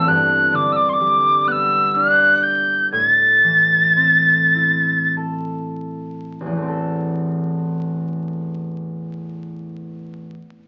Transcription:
Already playing: harp A1 E2 E3 C4 E4 A4 C5 E5 F#5
0.06 harp G2, tin whistle F#6
0.53 harp D3, tin whistle D6
0.72 tin whistle E6
0.76 tin whistle D6
0.89 tin whistle C6
0.93 tin whistle D6
1.00 harp G3
1.47 harp B3, tin whistle F#6
1.52 tin whistle E6
1.95 harp D4, tin whistle F#6
2.43 tin whistle G6
2.92 harp A2, tin whistle G#6
3.07 tin whistle A6
3.43 harp E3
3.96 harp C4
4.55 harp E4
5.17 harp A4
6.41 harp A1
6.46 harp E2
6.51 harp E3
6.57 harp A3
6.62 harp C4
6.68 harp A4

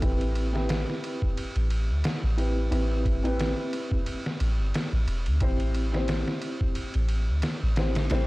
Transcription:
0.01 808-style bass A1, felt piano C4 E4 G4 B4, kick, ride
0.21 ride
0.35 ride
0.52 felt piano C4 E4 G4 B4, snare
0.69 snare, ride
0.90 snare
1.04 ride
1.22 kick
1.37 ride
1.56 808-style bass A1, ride
1.70 ride
1.90 808-style bass D2
2.04 snare, ride
2.23 808-style bass A1
2.37 felt piano C4 E4 G4 B4, ride
2.71 808-style bass A1, felt piano C4 E4 G4 B4, ride
3.05 kick, ride
3.23 felt piano C4 E4 G4 B4, ride
3.39 snare, ride
3.73 ride
3.92 kick
4.06 ride
4.26 snare
4.40 808-style bass A1, ride
4.59 808-style bass G1
4.74 snare, ride
4.93 808-style bass A1
5.07 808-style bass E1, ride
5.26 808-style bass D2, ride
5.40 808-style bass A1, felt piano C4 E4 G4 C5, kick, ride
5.60 ride
5.75 ride
5.92 felt piano C4 E4 G4, snare
5.96 felt piano C5
6.08 snare, ride
6.28 snare
6.42 ride
6.61 kick
6.75 ride
6.94 808-style bass A1, ride
7.08 ride
7.29 808-style bass D2
7.42 snare, ride
7.63 808-style bass A1
7.76 felt piano C4 E4 G4 C5, snare, ride
7.95 snare, ride
8.10 808-style bass A1, felt piano C4 E4 G4 C5, snare, ride

